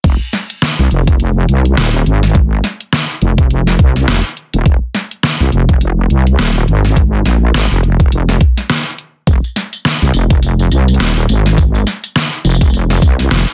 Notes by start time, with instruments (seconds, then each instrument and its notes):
0.04 wobble bass F1, kick, closed hi-hat, crash
0.33 snare, closed hi-hat
0.50 closed hi-hat
0.62 snare, closed hi-hat
0.79 wobble bass C2
0.91 wobble bass F1, closed hi-hat
1.07 kick, closed hi-hat
1.20 closed hi-hat
1.49 wobble bass C2, closed hi-hat
1.65 closed hi-hat
1.77 wobble bass D#1, snare, closed hi-hat
2.06 wobble bass G#1, closed hi-hat
2.23 snare, closed hi-hat
2.35 kick, closed hi-hat
2.64 snare, closed hi-hat
2.81 closed hi-hat
2.93 snare, closed hi-hat
3.22 wobble bass F1, closed hi-hat
3.38 kick, closed hi-hat
3.50 closed hi-hat
3.67 snare
3.79 wobble bass C2, kick, closed hi-hat
3.96 snare, closed hi-hat
4.08 wobble bass F1, snare, closed hi-hat
4.37 closed hi-hat
4.54 wobble bass D#1, closed hi-hat
4.66 wobble bass F1, kick, closed hi-hat
4.95 snare, closed hi-hat
5.11 closed hi-hat
5.23 snare, closed hi-hat
5.29 closed hi-hat
5.33 closed hi-hat
5.40 wobble bass C2
5.52 wobble bass F1, closed hi-hat
5.69 kick, closed hi-hat
5.81 closed hi-hat
6.10 wobble bass C2, closed hi-hat
6.27 closed hi-hat
6.39 wobble bass D#1, snare, closed hi-hat
6.68 wobble bass G#1, closed hi-hat
6.85 snare, closed hi-hat
6.97 kick, closed hi-hat
7.26 wobble bass A#1, snare, closed hi-hat
7.54 wobble bass G#1, snare, closed hi-hat
7.71 wobble bass F1
7.83 closed hi-hat
8.00 kick, closed hi-hat
8.12 wobble bass F1, closed hi-hat
8.29 snare
8.41 kick, closed hi-hat
8.57 snare, closed hi-hat
8.70 snare, closed hi-hat
8.98 closed hi-hat
9.27 wobble bass F1, kick, closed hi-hat, tambourine
9.44 tambourine
9.56 snare, closed hi-hat, tambourine
9.73 closed hi-hat, tambourine
9.85 snare, closed hi-hat, tambourine
10.02 wobble bass C2, tambourine
10.14 wobble bass F1, closed hi-hat, tambourine
10.30 kick, closed hi-hat, tambourine
10.43 closed hi-hat, tambourine
10.59 tambourine
10.71 wobble bass C2, closed hi-hat, tambourine
10.88 tambourine
10.94 closed hi-hat
11.00 wobble bass D#1, snare, closed hi-hat, tambourine
11.17 tambourine
11.29 wobble bass G#1, closed hi-hat, tambourine
11.46 snare, closed hi-hat, tambourine
11.58 kick, closed hi-hat, tambourine
11.75 tambourine
11.87 snare, closed hi-hat, tambourine
12.04 closed hi-hat, tambourine
12.16 snare, closed hi-hat, tambourine
12.33 tambourine
12.45 wobble bass F1, closed hi-hat, tambourine
12.50 tambourine
12.54 tambourine
12.61 kick, closed hi-hat, tambourine
12.64 tambourine
12.70 tambourine
12.74 closed hi-hat, tambourine
12.90 snare
12.96 tambourine
13.02 wobble bass C2, kick, closed hi-hat, tambourine
13.19 snare, closed hi-hat, tambourine
13.31 wobble bass F1, snare, closed hi-hat, tambourine
13.48 tambourine